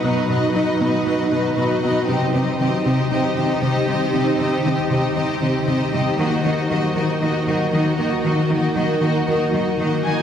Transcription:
Already playing: F#3 D#4 F#4 B4
0.03 B2 B3 D#4 F#4 B4 D#5
0.28 B2 D#4 F#4 B4 D#5
0.55 B2 D#4 F#4 B4 D#5
0.80 B2 B3 D#4 F#4 B4 D#5
1.06 B2 D#4 F#4 B4 D#5
1.31 B2 D#4 F#4 B4 D#5
1.57 B2 B3 D#4 F#4 B4 D#5
1.82 B2 D#4 F#4 B4 D#5
2.08 C3 D#3 C4 D#4 G4 C5 D#5
2.34 C3 C4 D#4 G4 D#5
2.59 C3 D#3 C4 D#4 G4 D#5
2.85 C3 C4 D#4 G4 D#5
3.11 C3 C4 D#4 G4 D#5
3.36 C3 D#3 C4 D#4 G4 D#5
3.63 C3 C4 D#4 G4 D#5
3.88 C3 G3 C4 D#4 G4 D#5
4.13 C3 C4 D#4 G4 D#5
4.39 C3 C4 D#4 G4 D#5
4.64 C3 D#3 C4 D#4 G4 D#5
4.90 C3 C4 D#4 G4 D#5
5.16 C3 C4 D#4 G4 D#5
5.41 C3 D#3 C4 D#4 G4 D#5
5.67 C3 C4 D#4 G4 D#5
5.92 C3 G3 C4 D#4 G4 D#5
6.18 D#3 A#3 D#4 F#4 A#4 D#5
6.44 D#3 A#3 D#4 F#4 D#5
6.70 D#3 F#3 A#3 D#4 F#4 D#5
6.95 D#3 A#3 D#4 F#4 D#5
7.21 D#3 A#3 D#4 F#4 D#5
7.46 D#3 F#3 A#3 D#4 F#4 D#5
7.72 D#3 A#3 D#4 F#4 D#5
7.97 D#3 A#3 D#4 F#4 D#5
8.23 D#3 A#3 D#4 F#4 D#5
8.50 D#3 A#3 D#4 F#4 D#5
8.76 D#3 F#3 A#3 D#4 F#4 D#5
9.01 D#3 A#3 D#4 F#4 D#5
9.26 D#3 A#3 D#4 F#4 D#5
9.52 D#3 F#3 A#3 D#4 F#4 D#5
9.78 D#3 A#3 D#4 F#4 D#5
10.03 D#3 A#3 D#4 F#4 D#5 G#5

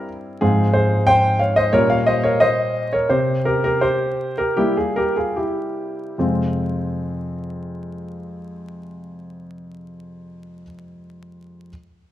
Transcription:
Already playing: G2 G3 C4 E4
0.41 G#2 F3 C4 F4 G#4
0.73 G#4 C5
1.07 C5 G5
1.39 C#5 F5
1.56 C5 D#5
1.73 A#2 G3 A#3 C#4 A#4 C#5
1.90 C#5 F5
2.06 C5 D#5
2.24 A#4 C#5
2.40 C5 D#5
2.93 A#4 C#5
3.09 C3 G4 C5
3.45 G4 A#4
3.64 G4 A#4
3.81 G4 C5
4.38 G4 A#4
4.57 G3 A#3 E4 G4
4.77 F4 G#4
4.96 G4 A#4
5.16 F4 G#4
5.36 E4 G4
6.18 F2 C3 G#3 C4 F4

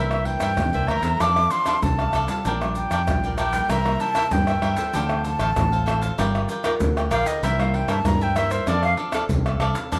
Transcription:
Already playing: C2 C3 E3 A#3 D4 E4 A#4 C5 E5
0.11 pandeiro, tamborim, shaker
0.25 E3 A#3 D4 G5, pandeiro, surdo
0.40 G2 E4 A#4 C5 E5, pandeiro, tamborim, shaker, surdo
0.57 E2 G2, pandeiro, tamborim, shaker, surdo
0.73 C2 E3 A#3 D4 A#4 C5 E5, pandeiro, shaker
0.88 D2 E4 A#4 C5 E5 A#5, pandeiro, tamborim
1.03 E2 C4 D4 A4 A#4 C5 E5, pandeiro, shaker, surdo
1.20 F2 F3 D4 A4 D5 F5 D6, pandeiro, tamborim, shaker, surdo
1.36 C4 D4 A4, pandeiro, tamborim, shaker
1.50 D4 A4 D5 F5 C6, pandeiro, shaker
1.66 D4 A4 D5 F5, pandeiro, tamborim, shaker, surdo
1.82 C2 C3 C4 D4 A4 A5, pandeiro, shaker, surdo
1.99 A4 D5 F5, pandeiro, tamborim, shaker
2.13 C2 D4 A4 D5 F5, pandeiro, tamborim, shaker
2.28 G3 D4 F4 D5 F5, pandeiro, shaker, surdo
2.32 A4
2.45 A#1 A#2 D4 A#4 D5 G5, pandeiro, shaker, surdo
2.61 G3 D4 F4, pandeiro, tamborim, shaker
2.75 G5, pandeiro, shaker, surdo
2.91 F2 D4 A#4 D5 G5, pandeiro, tamborim, shaker, surdo
3.06 A#1 F3 G3 D4 F4, pandeiro, tamborim, shaker, surdo
3.23 A#4 D5 G5, pandeiro, shaker
3.38 D4 A#4 D5 G5, pandeiro, tamborim, shaker
3.52 G3 A#3 E4 A#4 D5 G5, pandeiro, shaker, surdo
3.69 C2 C3 E4 A#4 C5 E5 A#5, pandeiro, tamborim, shaker, surdo
3.85 G3 A#3 E4, pandeiro, tamborim, shaker
4.00 E4 A#4 C5 E5 A5, pandeiro, shaker
4.15 E4 A#4 C5 E5, pandeiro, tamborim, shaker, surdo
4.31 G2 G3 A#3 E4 G5, pandeiro, shaker, surdo
4.47 A#4 C5 E5, pandeiro, tamborim, shaker
4.62 G2 E4 A#4 C5 E5, pandeiro, tamborim
4.77 C4 F4 A4 A#4 C5 E5, pandeiro, shaker, surdo
4.93 D2 D3 D4 A4 C5 F5, pandeiro, shaker, surdo
5.09 C4 F4 A4, pandeiro, tamborim, shaker
5.24 A5, pandeiro, shaker, surdo
5.39 A1 D4 A4 C5 F5, pandeiro, tamborim, shaker, surdo
5.56 A1 A2 C4 F4 A4, pandeiro, tamborim, shaker, surdo
5.72 A4 C5 F5, pandeiro, shaker
5.86 C4 D4 F4 A4 C5 F5, pandeiro, tamborim, shaker
6.02 A4 C5 F5, pandeiro, shaker, surdo
6.18 G1 G3 D4 F4 A#4 D5 G5, pandeiro, tamborim, shaker, surdo
6.35 pandeiro, tamborim, shaker
6.49 F4 A#4 D5 G5, pandeiro, shaker
6.64 D4 F4 A#4 D5 G5, pandeiro, tamborim, shaker, surdo
6.80 D2 D3, pandeiro, shaker, surdo
6.97 A#4 D5 G5, pandeiro, tamborim, shaker
7.11 A#1 D4 F4 A#4 D5 F5 G5, pandeiro, tamborim, shaker
7.25 A#4 D5 D#5 G5, pandeiro, shaker, surdo
7.43 C2 C3 G3 A#3 E4 A#4 C5 E5, pandeiro, shaker, surdo
7.59 G3 A#3 E4 F5, pandeiro, tamborim, shaker
7.74 G5, pandeiro
7.88 G2 E4 A#4 C5 E5 A5, pandeiro, tamborim, shaker, surdo
8.05 G2 G3 A#3 E4 A#5, pandeiro, tamborim, shaker, surdo
8.21 A#4 C5 E5 G5, pandeiro, shaker
8.36 G3 A#3 E4 A#4 C5 E5, pandeiro, tamborim, shaker
8.51 A#4 C5 E5, pandeiro, shaker, surdo
8.67 F2 F3 C4 D4 A4 D5 F5, pandeiro, tamborim, shaker, surdo
8.83 F5, pandeiro, tamborim, shaker
8.97 D4 A4 D5 F5, pandeiro
9.12 C4 D4 A4 D5 F5, pandeiro, tamborim, shaker, surdo
9.29 C2 C3, pandeiro, shaker, surdo
9.46 A4 D5 F5, pandeiro, tamborim, shaker
9.59 C2 C4 D4 A4 D5 F5, pandeiro, tamborim
9.75 A4 D5 F5, pandeiro, shaker, surdo
9.92 F2 F3 D4 A4 D5 F5, pandeiro, shaker, surdo

